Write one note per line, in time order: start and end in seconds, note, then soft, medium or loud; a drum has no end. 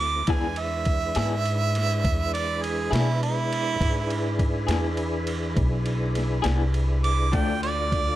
0.00 0.26 D2 medium
0.00 0.23 A3 medium
0.00 0.23 C4 medium
0.00 0.23 E4 medium
0.00 0.30 D6 loud
0.27 1.13 E2 medium
0.27 0.45 E3 medium
0.27 3.78 G#3 medium
0.27 0.46 B3 medium
0.27 3.77 D4 medium
0.27 0.46 D4 medium
0.27 3.77 E4 medium
0.27 0.47 G#4 medium
0.27 3.77 B4 medium
0.27 0.61 G#5 medium
0.27 kick loud
0.27 ride medium
0.56 2.31 E5 loud
0.56 ride medium
0.85 kick medium
0.85 ride medium
1.15 2.02 G#2 loud
1.15 1.34 E3 medium
1.15 1.34 B3 medium
1.15 1.34 D4 medium
1.15 1.34 G#4 medium
1.15 snare loud
1.15 ride medium
1.46 ride medium
1.75 snare soft
1.75 ride medium
2.04 2.90 E2 medium
2.04 kick loud
2.04 ride medium
2.33 2.64 D5 loud
2.33 ride medium
2.63 2.94 G#4 medium
2.63 ride medium
2.91 3.78 B2 loud
2.91 3.10 E3 medium
2.91 3.10 B3 medium
2.91 3.10 D4 medium
2.91 3.21 E4 loud
2.91 3.09 G#4 medium
2.91 ride medium
2.96 snare loud
3.23 4.37 E4 loud
3.23 ride medium
3.53 ride medium
3.80 4.66 G#2 loud
3.80 7.30 D4 medium
3.80 7.30 E4 medium
3.80 7.30 G#4 medium
3.80 7.30 B4 medium
3.80 kick loud
3.80 ride loud
4.10 ride medium
4.39 kick medium
4.39 ride medium
4.67 5.54 E2 loud
4.67 4.87 E3 medium
4.67 4.86 B3 medium
4.67 4.86 D4 medium
4.67 4.85 G#4 medium
4.67 ride medium
4.71 snare loud
4.97 ride medium
5.27 ride medium
5.56 6.42 B1 loud
5.56 kick loud
5.56 ride medium
5.86 ride medium
6.15 snare soft
6.15 ride medium
6.42 7.31 C2 loud
6.42 6.62 E3 medium
6.42 6.62 B3 medium
6.42 6.62 D4 medium
6.42 6.61 G#4 medium
6.42 ride medium
6.46 snare loud
6.74 ride medium
7.04 7.36 D6 loud
7.04 ride medium
7.32 8.16 D2 loud
7.32 7.50 D3 medium
7.32 7.51 F3 medium
7.32 8.16 A3 medium
7.32 7.51 A3 medium
7.32 8.16 D4 medium
7.32 7.52 D4 medium
7.32 8.16 F4 medium
7.32 8.16 D5 medium
7.32 7.62 G5 loud
7.32 kick loud
7.32 ride medium
7.63 8.16 D5 loud
7.63 ride medium
7.92 kick medium
7.92 ride medium